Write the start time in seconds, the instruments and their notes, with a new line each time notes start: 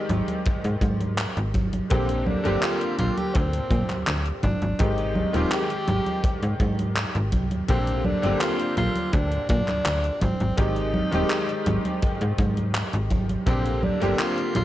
Already playing: electric grand piano D#3 G#3 C4 G4, tenor saxophone D#4
0.09 fm bass G#1, closed hi-hat, high conga
0.28 closed hi-hat, high conga
0.46 kick, closed hi-hat, high conga
0.64 fm bass G#2, closed hi-hat
0.81 fm bass G#2, kick, closed hi-hat, high conga
1.01 closed hi-hat, high conga
1.18 clap, closed hi-hat, high conga
1.37 fm bass G#1, closed hi-hat
1.54 kick, closed hi-hat, high conga
1.73 closed hi-hat, high conga
1.90 fm bass A#1, electric grand piano D3 A#3 C4 G4, tenor saxophone C4, kick, closed hi-hat, high conga
2.09 closed hi-hat
2.26 tenor saxophone D4, high conga
2.44 fm bass G1, electric grand piano D3 A#3 C4 G4, closed hi-hat, high conga
2.62 tenor saxophone F4, clap, closed hi-hat, high conga
2.81 closed hi-hat
2.99 fm bass A#1, tenor saxophone F4, closed hi-hat, high conga
3.18 tenor saxophone G4, closed hi-hat, high conga
3.35 fm bass D2, tenor saxophone C4, kick, closed hi-hat, high conga
3.53 closed hi-hat
3.71 fm bass A#2, kick, closed hi-hat, high conga
3.90 fm bass D2, clap, closed hi-hat, high conga
4.07 fm bass D2, clap, closed hi-hat, high conga
4.26 closed hi-hat
4.43 fm bass G#1, tenor saxophone D4, kick, closed hi-hat, high conga
4.62 fm bass G#1, closed hi-hat, high conga
4.79 fm bass G#1, electric grand piano D#3 G#3 C4 G4, tenor saxophone D#4, kick, closed hi-hat, high conga
4.98 closed hi-hat
5.15 high conga
5.33 fm bass D#1, electric grand piano D#3 G#3 C4 G4, tenor saxophone F4, closed hi-hat, high conga
5.51 tenor saxophone G4, clap, closed hi-hat, high conga
5.70 closed hi-hat
5.88 fm bass G#1, closed hi-hat, high conga
6.06 closed hi-hat, high conga
6.24 kick, closed hi-hat, high conga
6.43 fm bass G#2, closed hi-hat
6.60 fm bass G#2, kick, closed hi-hat, high conga
6.79 closed hi-hat, high conga
6.96 clap, closed hi-hat, high conga
7.15 fm bass G#1, closed hi-hat
7.32 fm bass C2, kick, closed hi-hat, high conga
7.51 fm bass D#2, closed hi-hat, high conga
7.68 fm bass A#1, electric grand piano D3 A#3 C4 G4, tenor saxophone C4, kick, closed hi-hat, high conga
7.87 closed hi-hat
8.04 tenor saxophone D4, high conga
8.22 fm bass G1, electric grand piano D3 A#3 C4 G4, closed hi-hat, high conga
8.41 tenor saxophone F4, clap, closed hi-hat, high conga
8.60 closed hi-hat
8.77 fm bass A#1, tenor saxophone F4, closed hi-hat, high conga
8.96 closed hi-hat, high conga
9.13 fm bass D2, tenor saxophone D4, kick, closed hi-hat, high conga
9.32 closed hi-hat
9.49 fm bass A#2, tenor saxophone D4, kick, closed hi-hat, high conga
9.68 fm bass D2, clap, closed hi-hat, high conga
9.85 fm bass D2, clap, closed hi-hat, high conga
10.04 closed hi-hat
10.21 fm bass G#1, tenor saxophone C4, kick, closed hi-hat, high conga
10.40 fm bass G#1, closed hi-hat, high conga
10.57 fm bass G#1, electric grand piano D#3 G#3 C4 G4, tenor saxophone D#4, kick, closed hi-hat, high conga
10.76 closed hi-hat
10.94 high conga
11.11 fm bass D#1, electric grand piano D#3 G#3 C4 G4, closed hi-hat, high conga
11.30 clap, closed hi-hat, high conga
11.49 closed hi-hat
11.66 fm bass G#1, closed hi-hat, high conga
11.85 closed hi-hat, high conga
12.02 kick, closed hi-hat, high conga
12.21 fm bass G#2, closed hi-hat
12.38 fm bass G#2, kick, closed hi-hat, high conga
12.57 closed hi-hat, high conga
12.75 clap, closed hi-hat, high conga
12.93 fm bass G#1, closed hi-hat
13.10 kick, closed hi-hat, high conga
13.29 closed hi-hat, high conga
13.46 fm bass A#1, electric grand piano D3 A#3 C4 G4, tenor saxophone C4, kick, closed hi-hat, high conga
13.66 closed hi-hat
13.83 tenor saxophone D4, high conga
14.00 fm bass G1, electric grand piano D3 A#3 C4 G4, closed hi-hat, high conga
14.19 tenor saxophone F4, clap, closed hi-hat, high conga
14.38 closed hi-hat
14.55 fm bass A#1, tenor saxophone F4, closed hi-hat, high conga